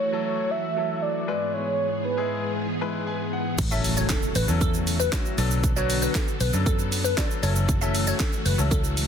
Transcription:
0.00 1.26 E3 medium
0.00 1.26 A3 medium
0.00 1.26 F#4 medium
0.00 0.22 C#5 loud
0.12 0.60 F#3 medium
0.12 0.60 E4 medium
0.12 0.61 A4 medium
0.25 0.52 C#5 loud
0.51 1.04 E5 loud
0.77 1.28 F#3 medium
0.77 1.26 E4 medium
0.77 1.28 A4 medium
1.02 1.55 D5 loud
1.28 3.56 G#2 medium
1.28 3.56 E3 medium
1.28 1.99 G#3 medium
1.28 3.56 B3 medium
1.28 2.00 E4 medium
1.28 3.56 G#4 medium
1.28 2.00 B4 medium
1.54 2.04 C#5 loud
2.05 2.52 B4 medium
2.17 2.65 G#3 medium
2.17 2.65 E4 medium
2.17 2.66 G#4 medium
2.81 3.39 G#3 medium
2.81 3.39 E4 medium
2.81 3.39 B4 medium
2.81 3.05 B5 medium
3.07 3.31 G#5 medium
3.33 3.57 F#5 medium
3.58 4.10 A1 loud
3.58 5.36 C#3 medium
3.58 5.36 A3 medium
3.58 5.36 F#4 medium
3.58 kick loud
3.58 closed hi-hat medium
3.58 crash loud
3.58 impact medium
3.58 shaker medium
3.71 4.29 F#3 medium
3.71 4.29 C#4 medium
3.71 4.29 E4 medium
3.71 4.29 A4 loud
3.71 3.82 E5 medium
3.71 shaker medium
3.84 open hi-hat medium
3.84 shaker medium
3.97 4.07 C#5 medium
3.97 shaker medium
4.09 4.31 A4 medium
4.09 kick loud
4.09 snare medium
4.09 clap loud
4.09 closed hi-hat medium
4.09 shaker medium
4.22 shaker medium
4.35 4.44 A1 medium
4.35 4.46 B4 medium
4.35 open hi-hat medium
4.35 shaker medium
4.48 5.08 E2 medium
4.48 4.96 F#3 medium
4.48 4.96 C#4 medium
4.48 4.96 E4 medium
4.48 4.96 A4 medium
4.48 shaker medium
4.61 4.72 A4 medium
4.61 kick loud
4.61 closed hi-hat medium
4.61 shaker medium
4.74 shaker medium
4.87 open hi-hat medium
4.87 shaker medium
5.00 5.10 B4 medium
5.00 shaker medium
5.12 5.36 F#3 medium
5.12 5.38 C#4 medium
5.12 5.38 E4 medium
5.12 5.38 F#4 medium
5.12 kick loud
5.12 snare medium
5.12 clap loud
5.12 closed hi-hat medium
5.12 shaker medium
5.26 shaker medium
5.38 6.06 B1 loud
5.38 7.41 D3 medium
5.38 5.69 F#3 loud
5.38 5.69 B3 medium
5.38 7.41 B3 medium
5.38 5.69 D4 medium
5.38 7.41 A4 medium
5.38 5.69 A4 loud
5.38 open hi-hat medium
5.38 shaker medium
5.51 shaker medium
5.64 kick loud
5.64 closed hi-hat medium
5.64 shaker medium
5.76 6.34 F#3 medium
5.76 6.34 B3 medium
5.76 6.34 D4 medium
5.76 6.34 F#4 loud
5.76 5.87 C#5 medium
5.76 shaker medium
5.90 open hi-hat medium
5.90 shaker medium
6.02 6.13 B4 medium
6.02 shaker medium
6.15 6.36 A4 medium
6.15 kick loud
6.15 snare loud
6.15 clap loud
6.15 closed hi-hat medium
6.15 shaker medium
6.28 shaker medium
6.40 6.49 B1 loud
6.40 6.51 B4 medium
6.40 open hi-hat medium
6.40 shaker medium
6.53 7.13 F#2 loud
6.53 7.01 F#3 medium
6.53 7.01 B3 medium
6.53 7.01 D4 medium
6.53 7.01 A4 medium
6.53 shaker medium
6.66 6.77 A4 medium
6.66 kick loud
6.66 closed hi-hat medium
6.66 shaker medium
6.79 shaker medium
6.92 open hi-hat medium
6.92 shaker medium
7.04 7.15 B4 medium
7.04 shaker medium
7.17 7.41 F#3 medium
7.17 7.43 B3 medium
7.17 7.43 D4 medium
7.17 7.42 A4 medium
7.17 7.28 D5 medium
7.17 kick loud
7.17 snare medium
7.17 clap loud
7.17 closed hi-hat medium
7.17 shaker medium
7.31 shaker medium
7.43 8.11 F#1 loud
7.43 9.07 E3 medium
7.43 7.74 F#3 medium
7.43 9.07 A3 medium
7.43 7.74 C#4 medium
7.43 7.74 E4 medium
7.43 9.07 F#4 medium
7.43 7.74 A4 loud
7.43 7.53 C#5 medium
7.43 open hi-hat medium
7.43 shaker medium
7.56 shaker medium
7.69 kick loud
7.69 closed hi-hat medium
7.69 shaker medium
7.81 8.39 F#3 medium
7.81 8.39 C#4 medium
7.81 8.39 E4 medium
7.81 8.39 A4 loud
7.81 7.92 E5 medium
7.81 shaker medium
7.95 open hi-hat medium
7.95 shaker medium
8.07 8.18 C#5 medium
8.07 shaker medium
8.20 8.41 A4 medium
8.20 kick loud
8.20 snare medium
8.20 clap loud
8.20 closed hi-hat medium
8.20 shaker medium
8.33 shaker medium
8.45 8.54 F#1 loud
8.45 8.56 B4 medium
8.45 open hi-hat medium
8.45 shaker medium
8.58 9.07 C#2 medium
8.58 9.06 F#3 medium
8.58 9.06 C#4 medium
8.58 9.06 E4 medium
8.58 9.06 A4 medium
8.58 shaker medium
8.71 8.82 A4 medium
8.71 kick loud
8.71 closed hi-hat medium
8.71 shaker medium
8.84 shaker medium
8.97 open hi-hat medium
8.97 shaker medium

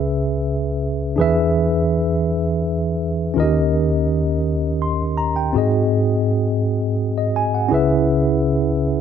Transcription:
0.00 1.16 C#2 medium
0.00 1.16 C#3 medium
0.00 1.14 C#4 medium
0.00 1.15 G#4 medium
0.00 1.16 B4 medium
0.00 1.20 E5 medium
1.16 3.32 E2 medium
1.16 3.32 E3 medium
1.16 3.31 D4 medium
1.16 3.32 G#4 medium
1.16 3.33 B4 medium
1.21 3.34 E5 medium
3.34 5.50 D#2 medium
3.34 5.50 D#3 medium
3.34 5.48 C#4 medium
3.34 3.43 F4 medium
3.38 5.50 A#4 medium
3.38 5.51 D#5 medium
3.42 5.53 G4 medium
4.82 5.16 C6 medium
5.18 5.35 A#5 medium
5.36 5.70 G5 medium
5.53 7.68 G#2 medium
5.53 7.66 C4 medium
5.53 7.67 F#4 medium
5.53 7.68 G#4 medium
5.58 6.62 D#5 medium
7.18 7.34 D#5 medium
7.36 7.53 G#5 medium
7.54 7.88 F#5 medium
7.69 9.01 C#2 medium
7.69 9.01 C#3 medium
7.69 9.01 C#4 medium
7.69 9.01 E4 medium
7.69 9.01 G#4 medium
7.73 9.01 B4 medium
7.73 9.01 E5 medium

